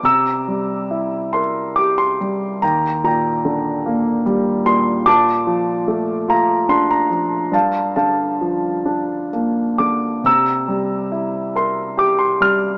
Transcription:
<<
  \new Staff \with { instrumentName = "Grand piano" } { \time 3/4 \key c \dorian \tempo 4 = 70 <bes'' e'''>4. c'''8 d'''16 c'''8. | <g'' bes''>8 <g'' bes''>4. r8 c'''8 | <a'' d'''>4. bes''8 c'''16 bes''8. | <f'' a''>8 <f'' a''>4. r8 d'''8 |
<bes'' e'''>4. c'''8 d'''16 c'''16 f'''8 | }
  \new Staff \with { instrumentName = "Grand piano" } { \clef bass \time 3/4 \key c \dorian c8 g8 e'8 bes'8 g'8 g8 | ees,8 bes,8 d8 bes8 g8 bes,8 | bes,8 f8 a8 f'8 d'8 f8 | g,8 d8 f8 d'8 bes8 d8 |
c8 g8 e'8 bes'8 g'8 g8 | }
>>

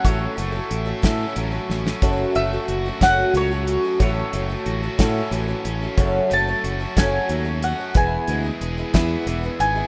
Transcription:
<<
  \new Staff \with { instrumentName = "Mandolin" } { \time 6/8 \key a \major \tempo 4. = 61 cis''2 r4 | r8 e''4 fis''8 cis''4 | cis''4. r4. | r8 a''4 gis''4 fis''8 |
gis''4. e''4 gis''8 | }
  \new Staff \with { instrumentName = "Reed electric piano" } { \time 6/8 \key a \major r2. | <fis' a' cis''>4 r8 <fis' a' cis''>4 r8 | <fis' a' cis''>4 r8 <fis' a' cis''>4 r8 | <fis' a' cis''>4 r8 <fis' a' cis''>4 r8 |
<e' gis' b'>4 r8 <e' gis' b'>4 r8 | }
  \new Staff \with { instrumentName = "Twelve-string acoustic guitar" } { \time 6/8 \key a \major <a, e fis a cis' a'>8 <fis a cis' a'>16 <fis a cis' a'>8 <fis a cis' a'>16 <a, e fis a cis' a'>8 <fis a cis' a'>16 <fis a cis' a'>8 <fis a cis' a'>16 | <fis, cis fis a fis' a'>8 <fis a fis' a'>16 <fis a fis' a'>8 <fis a fis' a'>16 <fis, cis fis a fis' a'>8 <fis a fis' a'>16 <fis a fis' a'>8 <fis a fis' a'>16 | <a, e fis a cis' a'>8 <fis a cis' a'>16 <fis a cis' a'>8 <fis a cis' a'>16 <a, e fis a cis' a'>8 <fis a cis' a'>16 <fis a cis' a'>8 <fis a cis' a'>16 | <fis, cis fis a cis' a'>8 <fis a cis' a'>16 <fis a cis' a'>8 <fis a cis' a'>16 <fis, cis fis a cis' a'>8 <fis a cis' a'>16 <fis a cis' a'>8 <fis a cis' a'>16 |
<e b e' gis'>8 <e b e' gis'>16 <b e' gis'>8 <b e' gis'>16 <e b e' gis'>8 <e b e' gis'>16 <b e' gis'>8 <b e' gis'>16 | }
  \new Staff \with { instrumentName = "Overdriven electric guitar" } { \time 6/8 \key a \major a,8 a8 e'8 cis'8 fis8 cis'8 | fis,8 a8 fis'8 cis'8 fis8 cis'8 | a,8 a8 fis'8 cis'8 e8 cis'8 | fis,8 a8 fis'8 cis'8 fis8 cis'8 |
e,8 gis8 gis'8 b8 e8 b8 | }
  \new Staff \with { instrumentName = "Fingered electric bass" } { \clef bass \time 6/8 \key a \major a,,8 fis,,8 a,,8 a,8 a,,8 a,,8 | fis,,8 fis,,8 fis,,8 fis,,8 cis,4 | a,,8 fis,,8 a,,8 a,8 a,,8 a,,8 | fis,,8 fis,,8 fis,,8 fis,,8 dis,4 |
e,,8 d,8 e,,8 e,8 e,,8 gis,,8 | }
  \new DrumStaff \with { instrumentName = "Drums" } \drummode { \time 6/8 <hh bd>8 hh8 hh8 <hh bd sn>8 hh8 sn16 sn16 | <hh bd>8 hh8 hh8 <hh bd sn>8 hh8 hh8 | <hh bd>8 hh8 hh8 <hh bd sn>8 hh8 hh8 | <hh bd>8 hh8 hh8 <hh bd sn>8 hh8 hh8 |
<hh bd>8 hh8 hh8 <hh bd sn>8 hh8 hh8 | }
>>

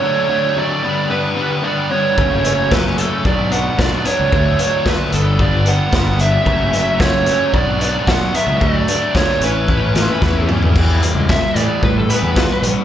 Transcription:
<<
  \new Staff \with { instrumentName = "Lead electric guitar" } { \time 4/4 \key e \dorian \tempo 4 = 112 cis''4 d''4 b'4 d''8 cis''8~ | cis''4 b'8 a'8 d''8 fis''8 d''8 cis''8~ | cis''4 b'8 a'8 d''8 fis''8 fis''8 e''8~ | e''4 cis''4 d''4 fis''8 e''8 |
d''4 cis''8 b'2 r8 | r4 e''8 d''8 b'16 a'16 b'4 r8 | }
  \new Staff \with { instrumentName = "Overdriven electric guitar" } { \clef bass \time 4/4 \key e \dorian <d fis a d'>8 <d fis a d'>8 <d fis a d'>8 <g, d g b d'>8 <g, d g b d'>8 <g, d g b d'>8 <g, d g b d'>8 <g, d g b d'>8 | <fis, cis fis a cis'>8 <fis, cis fis a cis'>8 <fis, cis fis a cis'>8 <fis, cis fis a cis'>8 <b, fis b d'>8 <b, fis b d'>8 <b, fis b d'>8 <b, fis b d'>8 | <d fis a d'>8 <d fis a d'>8 <d fis a d'>8 <g, d g b d'>8 <g, d g b d'>8 <g, d g b d'>8 <g, d g b d'>8 <g, d g b d'>8 | <fis, cis fis a cis'>8 <fis, cis fis a cis'>8 <fis, cis fis a cis'>8 <fis, cis fis a cis'>8 <b, fis b d'>8 <b, fis b d'>8 <b, fis b d'>8 <b, fis b d'>8 |
<d fis a d'>8 <d fis a d'>8 <d fis a d'>8 <a, e a cis' e'>8 <a, e a cis' e'>8 <a, e a cis' e'>8 <a, e a cis' e'>8 <a, e a cis' e'>8 | e8 g8 b8 e8 g8 b8 fis'8 b8 | }
  \new Staff \with { instrumentName = "Overdriven electric guitar" } { \clef bass \time 4/4 \key e \dorian <d fis a d'>8 <d fis a d'>8 <d fis a d'>8 <g, d g b d'>8 <g, d g b d'>8 <g, d g b d'>8 <g, d g b d'>8 <g, d g b d'>8 | <fis, cis fis a cis'>8 <fis, cis fis a cis'>8 <fis, cis fis a cis'>8 <fis, cis fis a cis'>8 <b, fis b d'>8 <b, fis b d'>8 <b, fis b d'>8 <b, fis b d'>8 | <d fis a d'>8 <d fis a d'>8 <d fis a d'>8 <g, d g b d'>8 <g, d g b d'>8 <g, d g b d'>8 <g, d g b d'>8 <g, d g b d'>8 | <fis, cis fis a cis'>8 <fis, cis fis a cis'>8 <fis, cis fis a cis'>8 <fis, cis fis a cis'>8 <b, fis b d'>8 <b, fis b d'>8 <b, fis b d'>8 <b, fis b d'>8 |
<d fis a d'>8 <d fis a d'>8 <d fis a d'>8 <a, e a cis' e'>8 <a, e a cis' e'>8 <a, e a cis' e'>8 <a, e a cis' e'>8 <a, e a cis' e'>8 | <e g b>8 <e g>8 <e g>8 <e g b>8 <e g>8 <e g b>8 <e g>8 <e g>8 | }
  \new Staff \with { instrumentName = "Fingered electric bass" } { \clef bass \time 4/4 \key e \dorian r1 | fis,,2 b,,4 b,,8 r16 cis,16 | d,8 r4 g,,4. g,,4 | fis,,2 b,,4 b,,8 r16 cis,16 |
d,8 r4 a,,4. e,4 | e,8 r16 cis,8 r16 a,16 r16 a,8. e,8 r16 bes,,16 r16 | }
  \new DrumStaff \with { instrumentName = "Drums" } \drummode { \time 4/4 r4 r4 r4 r4 | bd8 hh8 <bd sn>8 hh8 bd8 hh8 <bd sn>8 hh8 | bd8 hh8 <bd sn>8 hh8 bd8 hh8 <bd sn>8 hh8 | bd8 hh8 <bd sn>8 hh8 bd8 hh8 <bd sn>8 hh8 |
bd8 hh8 <bd sn>8 hh8 bd8 <hh sn>8 <bd sn>8 toml16 tomfh16 | <cymc bd>8 hh8 <bd sn>8 hh8 bd8 hh8 <bd sn>8 hh8 | }
>>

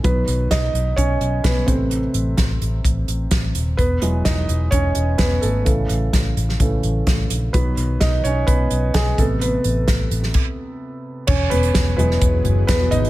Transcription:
<<
  \new Staff \with { instrumentName = "Ambient pad" } { \time 4/4 \key e \major \tempo 4 = 128 r1 | r1 | r1 | r1 |
r1 | r1 | <e b fis' gis'>1 | }
  \new Staff \with { instrumentName = "Felt piano" } { \time 4/4 \key e \major <b b'>4 <dis' dis''>4 <cis' cis''>4 <b b'>8 <c' c''>8~ | <c' c''>2.~ <c' c''>8 r8 | <b b'>4 <dis' dis''>4 <cis' cis''>4 <b b'>8 <a a'>8~ | <a a'>2.~ <a a'>8 r8 |
<b b'>4 <dis' dis''>8 <cis' cis''>8 <b b'>4 <gis gis'>8 a'8 | <b b'>2 r2 | <cis' cis''>8 <b b'>4 <b b'>4. <b b'>8 <dis' dis''>8 | }
  \new Staff \with { instrumentName = "Felt piano" } { \clef bass \time 4/4 \key e \major <dis fis>8 r2. <c a b'>8 | r1 | r8 <e fis gis>8 r2. | <cis e a>2 <cis e a>8 r4. |
<dis fis>2.~ <dis fis>8 <c a b>8~ | <c a b>4 r2. | r4. <e fis gis>4. r4 | }
  \new Staff \with { instrumentName = "Fingered electric bass" } { \clef bass \time 4/4 \key e \major b,,8 b,,8 b,,8 b,,8 b,,8 b,,8 b,,8 a,,8~ | a,,8 a,,8 a,,8 a,,8 a,,8 a,,8 a,,8 dis,,8 | e,,8 e,,8 e,,8 e,,8 e,,8 e,,8 r8 gis,,8 | a,,8 a,,8 a,,8 a,,8 a,,8 a,,8 a,,8 ais,,8 |
b,,8 b,,8 b,,8 b,,8 b,,8 b,,8 b,,8 a,,8~ | a,,8 a,,8 a,,8 a,,8 r2 | e,,8 e,,8 e,,8 e,,8 e,,8 fis,,8 e,,8 gis,,8 | }
  \new DrumStaff \with { instrumentName = "Drums" } \drummode { \time 4/4 <hh bd>8 hh8 <hh bd sn>8 hh8 <hh bd>8 hh8 <hh bd sn>8 <hh bd>8 | hh8 hh8 <hh bd sn>8 hh8 <hh bd>8 hh8 <hh bd sn>8 hh8 | <hh bd>8 hh8 <hh bd sn>8 hh8 <hh bd>8 hh8 <hh bd sn>8 hh8 | <hh bd>8 hh8 <hh bd sn>8 hh16 sn16 <hh bd>8 hh8 <hh bd sn>8 hh8 |
<hh bd>8 hh8 <hh bd sn>8 hh8 <hh bd>8 hh8 <hh bd sn>8 <hh bd>8 | hh8 hh8 <hh bd sn>8 hh16 sn16 <cymc bd>4 r4 | <cymc bd>8 <hh tomfh>16 hh16 <hh bd sn>8 <hh tomfh>16 sn16 <hh bd>8 <hh tomfh>8 <hh bd sn>8 <hh tomfh>16 hh16 | }
>>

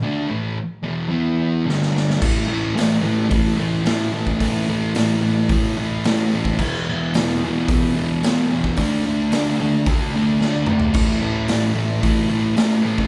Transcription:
<<
  \new Staff \with { instrumentName = "Distorted electric guitar" } { \clef bass \time 4/4 \key a \major \tempo 4 = 110 <d a d'>8 <a, e a>8 r8 <e, b, e>8 <e b e'>4 <g, d g>4 | <a, e a>8 <a, e a>8 <a, e a>8 <a, e a>8 <a, e a>8 <a, e a>8 <a, e a>8 <a, e a>8 | <a, e a>8 <a, e a>8 <a, e a>8 <a, e a>8 <a, e a>8 <a, e a>8 <a, e a>8 <a, e a>8 | <e, b, e>8 <e, b, e>8 <e, b, e>8 <e, b, e>8 <e, b, e>8 <e, b, e>8 <e, b, e>8 <e, b, e>8 |
<d a d'>8 <d a d'>8 <d a d'>8 <d a d'>8 <d a d'>8 <d a d'>8 <d a d'>8 <d a d'>8 | <a, e a>8 <a, e a>8 <a, e a>8 <a, e a>8 <a, e a>8 <a, e a>8 <a, e a>8 <a, e a>8 | }
  \new DrumStaff \with { instrumentName = "Drums" } \drummode { \time 4/4 r4 r4 r4 sn16 sn16 sn16 sn16 | <cymc bd>4 <hho sn>4 <hho bd>4 <hho sn>8. bd16 | <hho bd>4 <hho sn>4 <hho bd>4 <hho sn>8. bd16 | <cymc bd>4 <hho sn>4 <hho bd>4 <hho sn>8. bd16 |
<hho bd>4 <hho sn>4 <hho bd>4 sn8 toml16 tomfh16 | <cymc bd>4 <hho sn>4 <hho bd>4 <hho sn>8. bd16 | }
>>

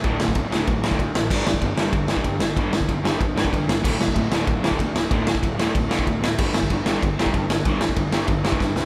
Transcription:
<<
  \new Staff \with { instrumentName = "Distorted electric guitar" } { \clef bass \time 4/4 \key g \dorian \tempo 4 = 189 <d, a, d>8 <d, a,>8 <d, a,>8 <d, a, d>8 <d, a,>8 <d, a, d>8 <d, a,>8 <d, a,>8 | <g, d g>8 <g, d>8 <g, d>8 <g, d g>8 <g, d>8 <g, d g>8 <g, d>8 <g, d>8 | <g, d g>8 <g, d>8 <g, d>8 <g, d g>8 <g, d>8 <g, d g>8 <g, d>8 <g, d>8 | <d, a, d>8 <d, a,>8 <d, a,>8 <d, a, d>8 <d, a,>8 <d, a, d>8 <d, a,>8 <d, a,>8 |
<d, a, d>8 <d, a,>8 <d, a,>8 <d, a, d>8 <d, a,>8 <d, a, d>8 <d, a,>8 <d, a,>8 | <g, d g>8 <g, d>8 <g, d>8 <g, d g>8 <g, d>8 <g, d g>8 <g, d>8 <g, d>8 | <g, d g>8 <g, d>8 <g, d>8 <g, d g>8 <g, d>8 <g, d g>8 <g, d>8 <g, d>8 | }
  \new Staff \with { instrumentName = "Overdriven electric guitar" } { \clef bass \time 4/4 \key g \dorian <d, a, d>8 <d, a,>8 <d, a,>8 <d, a, d>8 <d, a,>8 <d, a, d>8 <d, a,>8 <d, a,>8 | <g, d g>8 <g, d>8 <g, d>8 <g, d g>8 <g, d>8 <g, d g>8 <g, d>8 <g, d>8 | <g, d g>8 <g, d>8 <g, d>8 <g, d g>8 <g, d>8 <g, d g>8 <g, d>8 <g, d>8 | <d, a, d>8 <d, a,>8 <d, a,>8 <d, a, d>8 <d, a,>8 <d, a, d>8 <d, a,>8 <d, a,>8 |
<d, a, d>8 <d, a,>8 <d, a,>8 <d, a, d>8 <d, a,>8 <d, a, d>8 <d, a,>8 <d, a,>8 | <g, d g>8 <g, d>8 <g, d>8 <g, d g>8 <g, d>8 <g, d g>8 <g, d>8 <g, d>8 | <g, d g>8 <g, d>8 <g, d>8 <g, d g>8 <g, d>8 <g, d g>8 <g, d>8 <g, d>8 | }
  \new Staff \with { instrumentName = "Picked electric bass" } { \clef bass \time 4/4 \key g \dorian d,,8 d,,8 d,,8 d,,8 d,,4 d,8 a,,8 | g,,8 g,,8 g,,8 g,,8 g,,4 g,8 g,,8 | g,,8 g,,8 g,,8 g,,8 g,,4 g,8 g,,8 | d,,8 d,,8 d,,8 d,,8 d,,4 d,8 d,,8 |
d,,8 d,,8 d,,8 d,,8 d,,4 d,8 d,,8 | g,,8 g,,8 g,,8 g,,8 g,,4 g,8 g,,8 | g,,8 g,,8 g,,8 g,,8 g,,4 g,8 c,8 | }
  \new DrumStaff \with { instrumentName = "Drums" } \drummode { \time 4/4 <bd cymr>8 sn16 bd16 <bd cymr>8 sn8 <bd cymr>8 sn16 bd16 <bd cymr>8 sn8 | <cymc bd>8 sn16 bd16 <bd cymr>8 sn8 <bd cymr>8 sn16 bd16 <bd cymr>8 sn8 | <bd cymr>8 sn16 bd16 <bd cymr>8 sn8 <bd cymr>8 sn16 bd16 <bd cymr>8 sn8 | <cymc bd>8 sn16 bd16 <bd cymr>8 sn8 <bd cymr>8 sn16 bd16 <bd cymr>8 sn8 |
<bd cymr>8 sn16 bd16 <bd cymr>8 sn8 <bd cymr>8 sn16 bd16 <bd cymr>8 sn8 | <cymc bd>8 sn16 bd16 <bd cymr>8 sn8 <bd cymr>8 sn16 bd16 <bd cymr>8 sn8 | <bd cymr>8 sn16 bd16 <bd cymr>8 sn8 <bd cymr>8 sn16 bd16 <bd sn>8 sn8 | }
>>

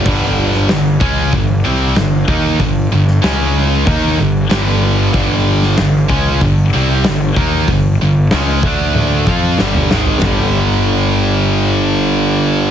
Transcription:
<<
  \new Staff \with { instrumentName = "Distorted electric guitar" } { \clef bass \time 4/4 \key g \minor \tempo 4 = 94 <g, d g>4 <g, d>8 <cis aes cis'>8 <g, d>8 <c g c'>8 <g, d>8 <ees bes ees'>8 | <g, d>8 <g, d>8 <cis gis cis'>4 <ees bes ees'>8 <g, d>8 <g, d g>4 | <g, d g>4 <g, d>8 <cis aes cis'>8 <g, d>8 <c g c'>8 <g, d>8 <ees bes ees'>8 | <g, d>8 <g, d>8 <cis aes cis'>8 <d a d'>4 <f c' f'>8 <g, d g>8 <aes, ees aes>8 |
<g, d g>1 | }
  \new Staff \with { instrumentName = "Picked electric bass" } { \clef bass \time 4/4 \key g \minor g,,4 g,,8 cis,8 g,,8 c,8 g,,8 ees,8 | g,,8 g,,8 cis,4 ees,8 g,,8 g,,4 | g,,4 g,,8 cis,8 g,,8 c,8 g,,8 ees,8 | g,,8 g,,8 cis,8 d,4 f,8 g,,8 aes,,8 |
g,,1 | }
  \new DrumStaff \with { instrumentName = "Drums" } \drummode { \time 4/4 <cymc hho bd>8. sn16 <hho sn>8 bd8 <hho bd>4 <hho sn>8 bd8 | <hho bd>8. sn16 <hho sn>4 <hho bd>4 <hho sn>4 | <hho bd>8. sn16 <hho sn>8 bd8 <hho bd>4 <hho sn>8 bd8 | <hho bd>4 <hho sn>8 bd8 tommh8 bd8 sn16 toml16 sn16 tomfh16 |
<bd rb sn>4 r4 r4 r4 | }
>>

